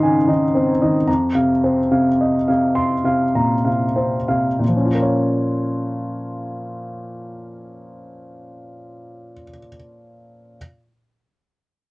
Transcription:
0.00 1.03 G#2 soft
0.00 0.28 C#3 soft
0.00 0.27 D#3 soft
0.00 0.55 C4 soft
0.00 1.10 D#4 soft
0.00 0.55 C5 soft
0.00 1.10 C#5 soft
0.00 0.28 D#5 soft
0.00 0.03 G#5 soft
0.00 0.44 G#5 soft
0.00 1.10 C6 medium
0.27 0.69 D#3 soft
0.27 0.70 D#5 soft
0.55 0.97 C4 soft
0.55 0.97 C5 soft
0.82 1.08 D#3 soft
0.82 1.08 D#5 soft
1.08 4.58 F2 soft
1.08 1.52 A#5 soft
1.35 1.79 C3 soft
1.35 1.79 F5 soft
1.64 2.08 C4 soft
1.64 2.08 C5 soft
1.91 2.36 C3 soft
1.91 2.36 F5 soft
2.21 2.48 D#5 soft
2.48 2.94 C3 soft
2.48 2.94 F5 soft
2.75 3.23 C6 soft
3.04 3.53 C3 soft
3.04 3.54 F5 soft
3.35 3.66 A#2 soft
3.35 3.85 A#5 soft
3.65 4.16 C3 soft
3.65 4.16 F5 soft
3.96 4.47 C4 soft
3.96 4.47 C5 soft
4.28 4.61 C3 soft
4.28 4.60 F5 soft
4.59 9.33 A#2 soft
4.68 9.42 F3 soft
4.76 9.50 C#4 soft
4.85 9.59 F4 soft
4.94 9.67 A#4 soft
5.02 9.76 C#5 soft

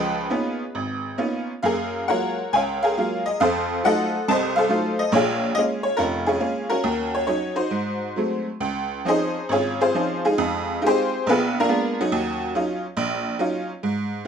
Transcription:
0.00 0.25 C#2 medium
0.00 0.26 F3 medium
0.00 1.17 G#4 medium
0.00 1.17 B4 medium
0.00 1.16 D#5 medium
0.30 0.62 A#3 soft
0.30 0.62 B3 soft
0.30 0.62 C#4 soft
0.30 0.62 D#4 soft
0.30 0.62 F4 soft
0.75 1.13 G#1 medium
1.18 1.50 A#3 soft
1.18 1.50 B3 soft
1.18 1.50 C#4 soft
1.18 1.50 D#4 soft
1.18 1.50 F4 soft
1.63 2.02 F#2 medium
1.63 2.02 A#3 medium
1.63 2.50 G#4 medium
1.63 2.08 A#4 medium
1.63 2.05 F5 medium
2.08 2.40 F#3 soft
2.08 2.40 G#3 soft
2.08 2.40 A#3 soft
2.08 2.41 F4 medium
2.08 2.82 A#4 medium
2.08 2.54 C#5 medium
2.08 2.54 F#5 medium
2.53 2.92 C#2 medium
2.53 3.38 C#5 medium
2.53 2.81 F5 medium
2.53 2.60 G#5 medium
2.83 3.38 G#4 medium
2.83 3.37 A#4 soft
2.83 3.23 F5 medium
2.97 3.28 F#3 soft
2.97 3.28 G#3 soft
2.97 3.28 A#3 soft
2.97 3.28 F4 medium
3.26 3.41 D#5 medium
3.40 3.78 F2 medium
3.40 3.85 A4 medium
3.40 4.24 C5 medium
3.40 3.81 F5 medium
3.84 4.15 F#3 soft
3.84 4.15 A3 soft
3.84 4.15 D#4 soft
3.84 4.15 F4 medium
3.84 4.57 A4 medium
3.84 4.29 D#5 medium
3.84 4.25 F#5 medium
4.28 4.65 C2 medium
4.28 4.65 C3 medium
4.28 4.56 C5 medium
4.28 4.98 D#5 medium
4.28 4.35 A5 loud
4.56 5.10 A4 medium
4.56 5.10 C5 medium
4.56 5.00 F5 medium
4.69 5.00 F#3 soft
4.69 5.00 A3 soft
4.69 5.00 D#4 soft
4.69 5.00 F4 medium
4.99 5.12 D#5 medium
5.12 5.50 A#1 medium
5.12 5.50 A#2 medium
5.12 5.96 F4 medium
5.12 5.96 G#4 medium
5.12 5.53 C#5 medium
5.55 5.86 G#3 medium
5.55 5.87 A#3 soft
5.55 5.87 C#4 medium
5.55 5.61 D#5 loud
5.83 5.98 C#5 medium
5.97 6.36 F1 medium
5.97 6.27 C#4 medium
5.97 6.26 F4 medium
5.97 6.03 A#4 medium
6.26 6.39 C#4 medium
6.26 6.81 F4 soft
6.26 6.71 G#4 medium
6.40 6.71 G#3 soft
6.40 6.71 A#3 soft
6.40 6.70 C#4 medium
6.70 7.26 C#4 soft
6.70 7.53 F#4 medium
6.70 7.11 A#4 medium
6.84 7.22 D#2 medium
7.15 7.25 C#5 medium
7.27 7.58 F#3 soft
7.27 7.58 C#4 soft
7.27 7.54 D#4 soft
7.27 7.54 C#5 medium
7.56 8.42 D#4 soft
7.56 8.42 F#4 soft
7.56 8.42 C5 medium
7.71 8.10 G#2 medium
8.16 8.48 F#3 soft
8.16 8.48 G#3 soft
8.16 8.49 A3 soft
8.16 8.49 C4 soft
8.60 9.00 C#2 medium
9.05 9.37 F3 soft
9.05 9.37 C4 soft
9.05 9.38 C#4 soft
9.05 9.08 D#4 soft
9.05 9.49 G#4 medium
9.05 9.49 C5 medium
9.05 9.48 D#5 medium
9.09 9.49 D#4 medium
9.49 9.88 G#1 medium
9.49 9.80 C#4 medium
9.49 9.80 F4 medium
9.49 9.80 G#4 medium
9.49 9.80 C#5 medium
9.81 9.93 C4 medium
9.81 10.22 F4 medium
9.81 10.22 G#4 medium
9.81 10.22 C5 medium
9.94 10.26 F3 soft
9.94 10.26 C4 soft
9.94 10.26 C#4 soft
9.94 10.24 D#4 soft
10.25 10.78 G#3 soft
10.25 10.79 D#4 medium
10.25 10.79 F4 medium
10.25 10.78 G#4 medium
10.38 10.76 F2 medium
10.81 11.12 G#3 soft
10.81 11.13 D#4 soft
10.81 11.13 F4 soft
10.81 10.85 G4 medium
10.86 11.26 C4 medium
10.86 11.25 G4 medium
10.86 11.25 G#4 medium
10.86 11.25 C5 medium
11.27 11.64 A#1 medium
11.27 11.56 B3 medium
11.27 11.56 F4 medium
11.27 11.56 G#4 medium
11.27 11.56 B4 medium
11.60 11.67 A#3 medium
11.60 11.68 D4 medium
11.60 11.98 F4 medium
11.60 11.98 A#4 medium
11.68 11.99 G#3 medium
11.68 11.99 A#3 soft
11.68 11.99 B3 soft
11.68 11.99 D4 medium
12.01 12.53 F#3 medium
12.01 12.52 C#4 medium
12.01 12.52 D#4 medium
12.01 12.52 F#4 medium
12.12 12.49 D#2 medium
12.55 12.84 F#3 medium
12.55 12.84 C#4 soft
12.55 12.84 D#4 soft
12.55 12.85 F4 medium
12.97 13.34 A#1 medium
13.39 13.70 F#3 medium
13.39 13.70 C#4 soft
13.39 13.70 D#4 medium
13.39 13.70 F4 medium
13.83 14.21 G#2 medium

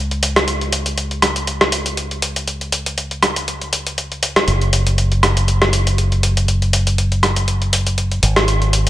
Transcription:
0.00 4.46 C#2 medium
0.11 closed hi-hat soft
0.23 closed hi-hat medium
0.36 cross-stick medium
0.36 closed hi-hat soft
0.48 closed hi-hat soft
0.61 closed hi-hat soft
0.72 closed hi-hat medium
0.86 closed hi-hat soft
0.98 closed hi-hat soft
1.11 closed hi-hat soft
1.22 cross-stick medium
1.22 closed hi-hat medium
1.36 closed hi-hat soft
1.47 closed hi-hat soft
1.61 cross-stick medium
1.61 closed hi-hat soft
1.72 closed hi-hat medium
1.86 closed hi-hat soft
1.97 closed hi-hat soft
2.11 closed hi-hat soft
2.22 closed hi-hat medium
2.36 closed hi-hat soft
2.48 closed hi-hat soft
2.61 closed hi-hat soft
2.72 closed hi-hat medium
2.86 closed hi-hat soft
2.98 closed hi-hat soft
3.11 closed hi-hat soft
3.23 cross-stick medium
3.23 closed hi-hat medium
3.36 closed hi-hat soft
3.48 closed hi-hat soft
3.61 closed hi-hat soft
3.73 closed hi-hat medium
3.87 closed hi-hat soft
3.98 closed hi-hat soft
4.12 closed hi-hat soft
4.23 closed hi-hat medium
4.36 cross-stick medium
4.36 closed hi-hat soft
4.48 8.21 F#1 medium
4.48 closed hi-hat soft
4.61 closed hi-hat soft
4.73 closed hi-hat medium
4.87 closed hi-hat soft
4.98 closed hi-hat soft
5.12 closed hi-hat soft
5.23 cross-stick medium
5.23 closed hi-hat medium
5.37 closed hi-hat soft
5.48 closed hi-hat soft
5.62 cross-stick medium
5.62 closed hi-hat soft
5.73 closed hi-hat medium
5.87 closed hi-hat soft
5.98 closed hi-hat soft
6.12 closed hi-hat soft
6.23 closed hi-hat medium
6.37 closed hi-hat soft
6.48 closed hi-hat soft
6.62 closed hi-hat soft
6.73 closed hi-hat medium
6.87 closed hi-hat soft
6.98 closed hi-hat soft
7.12 closed hi-hat soft
7.23 cross-stick medium
7.23 closed hi-hat medium
7.36 closed hi-hat soft
7.48 closed hi-hat soft
7.62 closed hi-hat soft
7.73 closed hi-hat medium
7.87 closed hi-hat soft
7.98 closed hi-hat soft
8.12 closed hi-hat soft
8.23 8.90 G#1 medium
8.23 closed hi-hat medium
8.36 cross-stick medium
8.36 closed hi-hat soft
8.48 closed hi-hat medium
8.62 closed hi-hat soft
8.73 closed hi-hat medium
8.87 closed hi-hat soft

